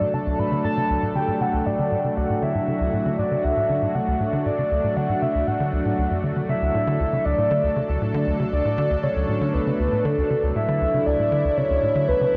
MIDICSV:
0, 0, Header, 1, 4, 480
1, 0, Start_track
1, 0, Key_signature, 2, "major"
1, 0, Tempo, 508475
1, 367, Time_signature, 4, 2, 24, 8
1, 11675, End_track
2, 0, Start_track
2, 0, Title_t, "Soft synth lead"
2, 0, Program_c, 0, 80
2, 0, Note_on_c, 0, 74, 100
2, 131, Note_on_c, 0, 81, 106
2, 145, Note_off_c, 0, 74, 0
2, 370, Note_on_c, 0, 83, 119
2, 384, Note_off_c, 0, 81, 0
2, 603, Note_off_c, 0, 83, 0
2, 609, Note_on_c, 0, 81, 110
2, 1055, Note_off_c, 0, 81, 0
2, 1091, Note_on_c, 0, 79, 99
2, 1331, Note_on_c, 0, 78, 104
2, 1346, Note_off_c, 0, 79, 0
2, 1570, Note_on_c, 0, 74, 103
2, 1584, Note_off_c, 0, 78, 0
2, 2049, Note_on_c, 0, 78, 97
2, 2064, Note_off_c, 0, 74, 0
2, 2285, Note_off_c, 0, 78, 0
2, 2291, Note_on_c, 0, 76, 107
2, 3009, Note_on_c, 0, 74, 90
2, 3024, Note_off_c, 0, 76, 0
2, 3249, Note_on_c, 0, 76, 95
2, 3263, Note_off_c, 0, 74, 0
2, 3728, Note_on_c, 0, 78, 89
2, 3742, Note_off_c, 0, 76, 0
2, 4088, Note_off_c, 0, 78, 0
2, 4209, Note_on_c, 0, 74, 98
2, 4688, Note_on_c, 0, 78, 90
2, 4703, Note_off_c, 0, 74, 0
2, 4930, Note_on_c, 0, 76, 86
2, 4944, Note_off_c, 0, 78, 0
2, 5168, Note_on_c, 0, 78, 89
2, 5182, Note_off_c, 0, 76, 0
2, 5888, Note_off_c, 0, 78, 0
2, 6127, Note_on_c, 0, 76, 122
2, 6846, Note_on_c, 0, 74, 107
2, 6860, Note_off_c, 0, 76, 0
2, 7567, Note_off_c, 0, 74, 0
2, 8046, Note_on_c, 0, 74, 98
2, 8524, Note_on_c, 0, 73, 95
2, 8538, Note_off_c, 0, 74, 0
2, 9004, Note_on_c, 0, 71, 93
2, 9019, Note_off_c, 0, 73, 0
2, 9486, Note_on_c, 0, 69, 89
2, 9500, Note_off_c, 0, 71, 0
2, 9846, Note_off_c, 0, 69, 0
2, 9966, Note_on_c, 0, 76, 113
2, 10443, Note_on_c, 0, 74, 99
2, 10457, Note_off_c, 0, 76, 0
2, 10925, Note_on_c, 0, 73, 102
2, 10939, Note_off_c, 0, 74, 0
2, 11399, Note_off_c, 0, 73, 0
2, 11405, Note_on_c, 0, 71, 95
2, 11675, Note_off_c, 0, 71, 0
2, 11675, End_track
3, 0, Start_track
3, 0, Title_t, "Analog synth pad"
3, 0, Program_c, 1, 89
3, 0, Note_on_c, 1, 54, 77
3, 0, Note_on_c, 1, 57, 73
3, 0, Note_on_c, 1, 62, 74
3, 0, Note_on_c, 1, 69, 88
3, 2274, Note_off_c, 1, 69, 0
3, 2287, Note_on_c, 1, 66, 91
3, 6114, Note_off_c, 1, 66, 0
3, 6127, Note_on_c, 1, 69, 89
3, 9953, Note_off_c, 1, 69, 0
3, 9967, Note_on_c, 1, 64, 90
3, 11675, Note_off_c, 1, 54, 0
3, 11675, Note_off_c, 1, 57, 0
3, 11675, Note_off_c, 1, 62, 0
3, 11675, Note_off_c, 1, 64, 0
3, 11675, End_track
4, 0, Start_track
4, 0, Title_t, "Analog synth bass"
4, 0, Program_c, 2, 38
4, 8, Note_on_c, 2, 45, 76
4, 58, Note_off_c, 2, 45, 0
4, 128, Note_on_c, 2, 49, 71
4, 178, Note_off_c, 2, 49, 0
4, 248, Note_on_c, 2, 38, 77
4, 332, Note_off_c, 2, 38, 0
4, 368, Note_on_c, 2, 45, 78
4, 482, Note_off_c, 2, 45, 0
4, 487, Note_on_c, 2, 50, 97
4, 601, Note_off_c, 2, 50, 0
4, 608, Note_on_c, 2, 45, 72
4, 658, Note_off_c, 2, 45, 0
4, 729, Note_on_c, 2, 49, 77
4, 779, Note_off_c, 2, 49, 0
4, 848, Note_on_c, 2, 38, 78
4, 932, Note_off_c, 2, 38, 0
4, 968, Note_on_c, 2, 45, 72
4, 1082, Note_off_c, 2, 45, 0
4, 1088, Note_on_c, 2, 50, 98
4, 1201, Note_off_c, 2, 50, 0
4, 1207, Note_on_c, 2, 45, 73
4, 1258, Note_off_c, 2, 45, 0
4, 1328, Note_on_c, 2, 49, 79
4, 1378, Note_off_c, 2, 49, 0
4, 1448, Note_on_c, 2, 38, 76
4, 1532, Note_off_c, 2, 38, 0
4, 1569, Note_on_c, 2, 45, 75
4, 1682, Note_off_c, 2, 45, 0
4, 1689, Note_on_c, 2, 50, 96
4, 1802, Note_off_c, 2, 50, 0
4, 1809, Note_on_c, 2, 45, 82
4, 1859, Note_off_c, 2, 45, 0
4, 1929, Note_on_c, 2, 49, 77
4, 1979, Note_off_c, 2, 49, 0
4, 2048, Note_on_c, 2, 38, 71
4, 2132, Note_off_c, 2, 38, 0
4, 2168, Note_on_c, 2, 45, 78
4, 2282, Note_off_c, 2, 45, 0
4, 2287, Note_on_c, 2, 50, 101
4, 2401, Note_off_c, 2, 50, 0
4, 2407, Note_on_c, 2, 45, 75
4, 2458, Note_off_c, 2, 45, 0
4, 2527, Note_on_c, 2, 49, 72
4, 2578, Note_off_c, 2, 49, 0
4, 2647, Note_on_c, 2, 38, 78
4, 2731, Note_off_c, 2, 38, 0
4, 2767, Note_on_c, 2, 45, 77
4, 2881, Note_off_c, 2, 45, 0
4, 2887, Note_on_c, 2, 50, 96
4, 3001, Note_off_c, 2, 50, 0
4, 3007, Note_on_c, 2, 45, 75
4, 3058, Note_off_c, 2, 45, 0
4, 3128, Note_on_c, 2, 49, 74
4, 3178, Note_off_c, 2, 49, 0
4, 3248, Note_on_c, 2, 38, 76
4, 3332, Note_off_c, 2, 38, 0
4, 3368, Note_on_c, 2, 45, 77
4, 3482, Note_off_c, 2, 45, 0
4, 3487, Note_on_c, 2, 50, 97
4, 3601, Note_off_c, 2, 50, 0
4, 3607, Note_on_c, 2, 45, 74
4, 3658, Note_off_c, 2, 45, 0
4, 3727, Note_on_c, 2, 49, 80
4, 3778, Note_off_c, 2, 49, 0
4, 3848, Note_on_c, 2, 38, 73
4, 3932, Note_off_c, 2, 38, 0
4, 3967, Note_on_c, 2, 45, 71
4, 4081, Note_off_c, 2, 45, 0
4, 4087, Note_on_c, 2, 50, 101
4, 4201, Note_off_c, 2, 50, 0
4, 4207, Note_on_c, 2, 45, 81
4, 4258, Note_off_c, 2, 45, 0
4, 4328, Note_on_c, 2, 49, 76
4, 4378, Note_off_c, 2, 49, 0
4, 4447, Note_on_c, 2, 38, 75
4, 4532, Note_off_c, 2, 38, 0
4, 4567, Note_on_c, 2, 45, 75
4, 4681, Note_off_c, 2, 45, 0
4, 4687, Note_on_c, 2, 50, 95
4, 4801, Note_off_c, 2, 50, 0
4, 4806, Note_on_c, 2, 45, 74
4, 4857, Note_off_c, 2, 45, 0
4, 4927, Note_on_c, 2, 49, 76
4, 4978, Note_off_c, 2, 49, 0
4, 5047, Note_on_c, 2, 38, 71
4, 5131, Note_off_c, 2, 38, 0
4, 5167, Note_on_c, 2, 45, 76
4, 5281, Note_off_c, 2, 45, 0
4, 5288, Note_on_c, 2, 50, 100
4, 5401, Note_off_c, 2, 50, 0
4, 5406, Note_on_c, 2, 38, 74
4, 5491, Note_off_c, 2, 38, 0
4, 5526, Note_on_c, 2, 45, 96
4, 5611, Note_off_c, 2, 45, 0
4, 5646, Note_on_c, 2, 38, 81
4, 5731, Note_off_c, 2, 38, 0
4, 5766, Note_on_c, 2, 42, 73
4, 5881, Note_off_c, 2, 42, 0
4, 5886, Note_on_c, 2, 50, 72
4, 5971, Note_off_c, 2, 50, 0
4, 6006, Note_on_c, 2, 50, 74
4, 6057, Note_off_c, 2, 50, 0
4, 6126, Note_on_c, 2, 49, 83
4, 6177, Note_off_c, 2, 49, 0
4, 6247, Note_on_c, 2, 38, 75
4, 6331, Note_off_c, 2, 38, 0
4, 6368, Note_on_c, 2, 45, 77
4, 6482, Note_off_c, 2, 45, 0
4, 6487, Note_on_c, 2, 50, 100
4, 6601, Note_off_c, 2, 50, 0
4, 6608, Note_on_c, 2, 38, 80
4, 6658, Note_off_c, 2, 38, 0
4, 6728, Note_on_c, 2, 49, 73
4, 6778, Note_off_c, 2, 49, 0
4, 6847, Note_on_c, 2, 38, 73
4, 6931, Note_off_c, 2, 38, 0
4, 6967, Note_on_c, 2, 45, 74
4, 7081, Note_off_c, 2, 45, 0
4, 7087, Note_on_c, 2, 50, 98
4, 7201, Note_off_c, 2, 50, 0
4, 7207, Note_on_c, 2, 38, 78
4, 7258, Note_off_c, 2, 38, 0
4, 7327, Note_on_c, 2, 49, 76
4, 7378, Note_off_c, 2, 49, 0
4, 7447, Note_on_c, 2, 38, 77
4, 7531, Note_off_c, 2, 38, 0
4, 7567, Note_on_c, 2, 45, 82
4, 7681, Note_off_c, 2, 45, 0
4, 7687, Note_on_c, 2, 50, 101
4, 7801, Note_off_c, 2, 50, 0
4, 7806, Note_on_c, 2, 38, 74
4, 7857, Note_off_c, 2, 38, 0
4, 7926, Note_on_c, 2, 49, 77
4, 7977, Note_off_c, 2, 49, 0
4, 8047, Note_on_c, 2, 38, 83
4, 8131, Note_off_c, 2, 38, 0
4, 8167, Note_on_c, 2, 45, 75
4, 8281, Note_off_c, 2, 45, 0
4, 8287, Note_on_c, 2, 50, 103
4, 8401, Note_off_c, 2, 50, 0
4, 8407, Note_on_c, 2, 38, 79
4, 8458, Note_off_c, 2, 38, 0
4, 8526, Note_on_c, 2, 49, 82
4, 8577, Note_off_c, 2, 49, 0
4, 8646, Note_on_c, 2, 38, 70
4, 8731, Note_off_c, 2, 38, 0
4, 8766, Note_on_c, 2, 45, 74
4, 8881, Note_off_c, 2, 45, 0
4, 8886, Note_on_c, 2, 50, 94
4, 9000, Note_off_c, 2, 50, 0
4, 9007, Note_on_c, 2, 38, 79
4, 9058, Note_off_c, 2, 38, 0
4, 9126, Note_on_c, 2, 49, 75
4, 9177, Note_off_c, 2, 49, 0
4, 9246, Note_on_c, 2, 38, 76
4, 9331, Note_off_c, 2, 38, 0
4, 9366, Note_on_c, 2, 45, 73
4, 9481, Note_off_c, 2, 45, 0
4, 9486, Note_on_c, 2, 50, 101
4, 9601, Note_off_c, 2, 50, 0
4, 9607, Note_on_c, 2, 38, 74
4, 9657, Note_off_c, 2, 38, 0
4, 9726, Note_on_c, 2, 49, 71
4, 9777, Note_off_c, 2, 49, 0
4, 9846, Note_on_c, 2, 38, 76
4, 9931, Note_off_c, 2, 38, 0
4, 9966, Note_on_c, 2, 45, 82
4, 10080, Note_off_c, 2, 45, 0
4, 10086, Note_on_c, 2, 50, 99
4, 10201, Note_off_c, 2, 50, 0
4, 10206, Note_on_c, 2, 38, 75
4, 10257, Note_off_c, 2, 38, 0
4, 10326, Note_on_c, 2, 49, 78
4, 10377, Note_off_c, 2, 49, 0
4, 10445, Note_on_c, 2, 38, 77
4, 10531, Note_off_c, 2, 38, 0
4, 10566, Note_on_c, 2, 45, 73
4, 10681, Note_off_c, 2, 45, 0
4, 10686, Note_on_c, 2, 50, 100
4, 10800, Note_off_c, 2, 50, 0
4, 10806, Note_on_c, 2, 38, 72
4, 10857, Note_off_c, 2, 38, 0
4, 10926, Note_on_c, 2, 49, 82
4, 10977, Note_off_c, 2, 49, 0
4, 11046, Note_on_c, 2, 38, 75
4, 11131, Note_off_c, 2, 38, 0
4, 11166, Note_on_c, 2, 45, 72
4, 11281, Note_off_c, 2, 45, 0
4, 11286, Note_on_c, 2, 50, 99
4, 11400, Note_off_c, 2, 50, 0
4, 11407, Note_on_c, 2, 38, 83
4, 11458, Note_off_c, 2, 38, 0
4, 11526, Note_on_c, 2, 49, 77
4, 11577, Note_off_c, 2, 49, 0
4, 11675, End_track
0, 0, End_of_file